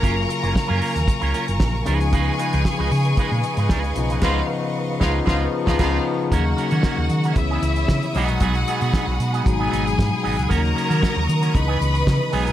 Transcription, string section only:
0.00 1.82 A#4 medium
0.00 1.82 F5 medium
0.00 1.85 G#5 medium
0.00 6.27 C#6 medium
1.86 6.28 B4 medium
1.86 6.28 D#5 medium
1.86 6.28 F5 medium
6.32 7.36 A#4 medium
6.32 7.35 D#5 medium
6.32 7.36 F#5 medium
6.32 7.36 C#6 medium
7.35 8.14 C#5 medium
7.35 8.14 E5 medium
7.35 10.47 B5 medium
7.35 9.43 D#6 medium
8.15 10.48 G#4 medium
8.15 11.52 F#5 medium
9.47 12.52 D#6 medium
10.52 11.54 A#4 medium
10.52 12.32 C#6 medium
11.55 12.52 B4 medium
11.55 12.32 D#5 medium
12.33 12.52 F#5 medium
12.33 12.52 G#5 medium

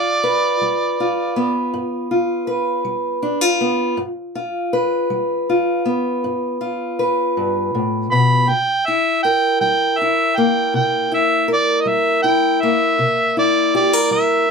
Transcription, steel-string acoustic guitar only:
0.00 0.17 G2 medium
0.00 1.00 F4 medium
0.24 2.46 B4 medium
0.61 1.29 G3 medium
1.00 2.10 F4 medium
1.36 3.60 B3 medium
1.74 2.41 G2 medium
2.11 3.22 F4 medium
2.47 3.93 B4 medium
2.85 3.53 G3 medium
3.23 3.41 D4 medium
3.41 3.98 F4 soft
3.61 3.94 B3 medium
3.97 4.65 G2 medium
4.35 5.48 F4 medium
4.73 6.98 B4 medium
5.10 5.78 G3 medium
5.49 6.60 F4 soft
5.86 8.44 B3 medium
6.24 6.91 G2 medium
6.61 8.44 F4 medium
6.99 8.44 B4 medium
7.37 7.74 G2 medium
7.75 8.11 A2 medium
8.12 8.49 B2 medium
8.49 9.16 C3 medium
8.88 10.01 E4 medium
9.25 11.47 A#4 medium
9.61 10.28 G3 medium
10.01 11.10 E4 soft
10.38 12.62 A#3 medium
10.74 11.41 C3 medium
11.12 12.23 E4 medium
11.48 12.94 A#4 medium
11.86 12.53 G3 medium
12.24 12.94 E4 medium
12.63 14.51 A#3 medium
12.99 13.66 C3 medium
13.37 14.48 E4 medium
13.75 13.93 G4 medium
13.93 14.51 A#4 soft
14.11 14.51 G3 medium

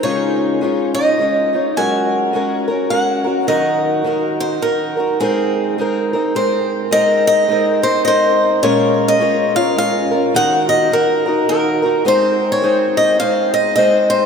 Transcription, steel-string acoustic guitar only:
0.03 0.94 C#5 medium
0.94 1.77 D#5 medium
1.77 2.90 G#5 medium
2.90 3.48 F#5 medium
3.48 4.40 D#5 medium
4.40 4.61 C5 medium
4.62 5.20 A#4 medium
5.20 5.74 G#4 medium
6.36 6.92 C5 medium
6.92 7.26 D#5 loud
7.27 7.80 D#5 loud
7.83 8.04 C5 medium
8.05 8.66 C5 medium
8.05 8.59 D#5 medium
8.63 9.08 C#5 medium
9.08 9.55 D#5 medium
9.56 9.76 F5 loud
9.78 10.36 F5 loud
10.36 10.69 F#5 loud
10.69 10.92 D#5 medium
10.93 11.45 A#4 medium
11.49 12.02 A#4 medium
12.08 12.49 C5 loud
12.52 12.99 C#5 medium
12.97 13.19 D#5 medium
13.20 13.53 F5 medium
13.54 13.74 D#5 medium
13.76 14.08 D#5 medium
14.10 14.26 C5 medium

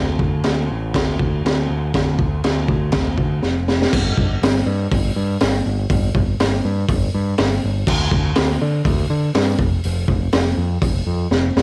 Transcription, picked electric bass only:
0.00 0.16 D2 medium
0.19 0.41 D2 medium
0.46 0.67 D2 medium
0.70 0.92 A1 medium
0.94 1.16 D2 medium
1.20 1.41 D2 medium
1.45 1.66 D2 medium
1.69 1.91 D2 medium
1.94 2.16 D2 medium
2.19 2.40 D2 medium
2.44 2.66 D2 medium
2.68 2.90 D2 medium
2.93 3.15 D2 medium
3.18 3.39 D2 medium
3.42 3.85 F1 medium
3.93 4.12 G1 medium
4.18 4.37 G1 medium
4.42 4.62 G1 medium
4.66 4.86 G2 medium
4.91 5.11 G1 loud
5.16 5.36 G2 medium
5.41 5.61 G1 loud
5.66 5.85 G1 loud
5.90 6.09 G1 medium
6.15 6.34 G1 medium
6.40 6.59 G1 medium
6.65 6.84 G2 medium
6.89 7.08 G1 loud
7.14 7.33 G2 loud
7.39 7.58 G1 loud
7.64 7.83 G1 loud
7.87 8.07 D2 medium
8.12 8.31 D2 medium
8.37 8.56 D2 medium
8.62 8.81 D3 loud
8.85 9.04 D2 medium
9.10 9.29 D3 loud
9.35 9.54 G2 loud
9.59 9.78 F1 medium
9.85 10.04 F1 medium
10.08 10.27 F1 medium
10.34 10.53 F1 medium
10.57 10.77 F2 loud
10.81 11.01 F1 loud
11.06 11.26 F2 medium
11.31 11.50 F1 medium
11.56 11.62 F1 medium

